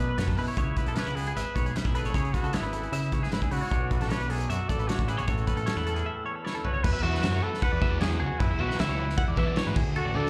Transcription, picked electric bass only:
0, 0, Header, 1, 2, 480
1, 0, Start_track
1, 0, Tempo, 390879
1, 705, Time_signature, 4, 2, 24, 8
1, 12647, End_track
2, 0, Start_track
2, 0, Title_t, "Picked electric bass"
2, 0, Program_c, 0, 34
2, 0, Note_on_c, 0, 47, 84
2, 138, Note_off_c, 0, 47, 0
2, 216, Note_on_c, 0, 42, 85
2, 421, Note_off_c, 0, 42, 0
2, 457, Note_on_c, 0, 47, 70
2, 561, Note_off_c, 0, 47, 0
2, 705, Note_on_c, 0, 37, 84
2, 1008, Note_off_c, 0, 37, 0
2, 1062, Note_on_c, 0, 35, 92
2, 1165, Note_off_c, 0, 35, 0
2, 1313, Note_on_c, 0, 37, 82
2, 1614, Note_off_c, 0, 37, 0
2, 1675, Note_on_c, 0, 32, 93
2, 1774, Note_off_c, 0, 32, 0
2, 1911, Note_on_c, 0, 35, 84
2, 2112, Note_off_c, 0, 35, 0
2, 2273, Note_on_c, 0, 35, 79
2, 2474, Note_off_c, 0, 35, 0
2, 2497, Note_on_c, 0, 32, 94
2, 2604, Note_off_c, 0, 32, 0
2, 2631, Note_on_c, 0, 49, 86
2, 2833, Note_off_c, 0, 49, 0
2, 2983, Note_on_c, 0, 37, 95
2, 3089, Note_off_c, 0, 37, 0
2, 3217, Note_on_c, 0, 32, 90
2, 3527, Note_off_c, 0, 32, 0
2, 3590, Note_on_c, 0, 49, 93
2, 3996, Note_off_c, 0, 49, 0
2, 4072, Note_on_c, 0, 32, 87
2, 4276, Note_off_c, 0, 32, 0
2, 4317, Note_on_c, 0, 49, 82
2, 4418, Note_off_c, 0, 49, 0
2, 4560, Note_on_c, 0, 35, 87
2, 4862, Note_off_c, 0, 35, 0
2, 4919, Note_on_c, 0, 33, 94
2, 5020, Note_off_c, 0, 33, 0
2, 5163, Note_on_c, 0, 35, 89
2, 5465, Note_off_c, 0, 35, 0
2, 5525, Note_on_c, 0, 42, 98
2, 5625, Note_off_c, 0, 42, 0
2, 5768, Note_on_c, 0, 33, 87
2, 5968, Note_off_c, 0, 33, 0
2, 6124, Note_on_c, 0, 33, 88
2, 6325, Note_off_c, 0, 33, 0
2, 6371, Note_on_c, 0, 35, 97
2, 6469, Note_off_c, 0, 35, 0
2, 6483, Note_on_c, 0, 33, 86
2, 6685, Note_off_c, 0, 33, 0
2, 6833, Note_on_c, 0, 33, 98
2, 6939, Note_off_c, 0, 33, 0
2, 7078, Note_on_c, 0, 40, 93
2, 7383, Note_off_c, 0, 40, 0
2, 8401, Note_on_c, 0, 40, 96
2, 8504, Note_off_c, 0, 40, 0
2, 8517, Note_on_c, 0, 35, 81
2, 8621, Note_off_c, 0, 35, 0
2, 8629, Note_on_c, 0, 40, 89
2, 8836, Note_off_c, 0, 40, 0
2, 8880, Note_on_c, 0, 42, 101
2, 9082, Note_off_c, 0, 42, 0
2, 9487, Note_on_c, 0, 40, 88
2, 9785, Note_off_c, 0, 40, 0
2, 9845, Note_on_c, 0, 40, 95
2, 10043, Note_off_c, 0, 40, 0
2, 10083, Note_on_c, 0, 37, 90
2, 10181, Note_off_c, 0, 37, 0
2, 10314, Note_on_c, 0, 42, 106
2, 10416, Note_off_c, 0, 42, 0
2, 10445, Note_on_c, 0, 40, 80
2, 10542, Note_off_c, 0, 40, 0
2, 10563, Note_on_c, 0, 35, 95
2, 10661, Note_off_c, 0, 35, 0
2, 10800, Note_on_c, 0, 37, 96
2, 11297, Note_off_c, 0, 37, 0
2, 11395, Note_on_c, 0, 40, 87
2, 11493, Note_off_c, 0, 40, 0
2, 11512, Note_on_c, 0, 52, 89
2, 11810, Note_off_c, 0, 52, 0
2, 11870, Note_on_c, 0, 44, 100
2, 11969, Note_off_c, 0, 44, 0
2, 11985, Note_on_c, 0, 38, 99
2, 12285, Note_off_c, 0, 38, 0
2, 12352, Note_on_c, 0, 33, 81
2, 12448, Note_off_c, 0, 33, 0
2, 12461, Note_on_c, 0, 38, 96
2, 12647, Note_off_c, 0, 38, 0
2, 12647, End_track
0, 0, End_of_file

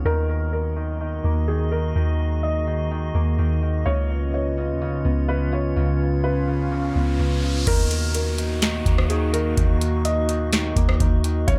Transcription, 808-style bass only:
0, 0, Header, 1, 2, 480
1, 0, Start_track
1, 0, Key_signature, -6, "minor"
1, 0, Tempo, 476190
1, 50, Time_signature, 4, 2, 24, 8
1, 11682, End_track
2, 0, Start_track
2, 0, Title_t, "808-style bass"
2, 0, Program_c, 0, 38
2, 52, Note_on_c, 0, 39, 102
2, 1211, Note_off_c, 0, 39, 0
2, 1251, Note_on_c, 0, 39, 101
2, 1942, Note_off_c, 0, 39, 0
2, 1971, Note_on_c, 0, 39, 105
2, 3131, Note_off_c, 0, 39, 0
2, 3171, Note_on_c, 0, 39, 103
2, 3401, Note_off_c, 0, 39, 0
2, 3411, Note_on_c, 0, 39, 105
2, 3871, Note_off_c, 0, 39, 0
2, 3890, Note_on_c, 0, 37, 98
2, 4731, Note_on_c, 0, 39, 96
2, 4746, Note_off_c, 0, 37, 0
2, 4910, Note_on_c, 0, 37, 99
2, 4926, Note_off_c, 0, 39, 0
2, 5082, Note_off_c, 0, 37, 0
2, 5091, Note_on_c, 0, 37, 102
2, 5782, Note_off_c, 0, 37, 0
2, 5811, Note_on_c, 0, 37, 102
2, 6970, Note_off_c, 0, 37, 0
2, 7011, Note_on_c, 0, 37, 101
2, 7241, Note_off_c, 0, 37, 0
2, 7251, Note_on_c, 0, 37, 102
2, 7712, Note_off_c, 0, 37, 0
2, 7731, Note_on_c, 0, 39, 109
2, 8890, Note_off_c, 0, 39, 0
2, 8928, Note_on_c, 0, 39, 102
2, 9621, Note_off_c, 0, 39, 0
2, 9651, Note_on_c, 0, 39, 110
2, 10811, Note_off_c, 0, 39, 0
2, 10847, Note_on_c, 0, 39, 106
2, 11079, Note_off_c, 0, 39, 0
2, 11090, Note_on_c, 0, 39, 110
2, 11551, Note_off_c, 0, 39, 0
2, 11570, Note_on_c, 0, 37, 102
2, 11682, Note_off_c, 0, 37, 0
2, 11682, End_track
0, 0, End_of_file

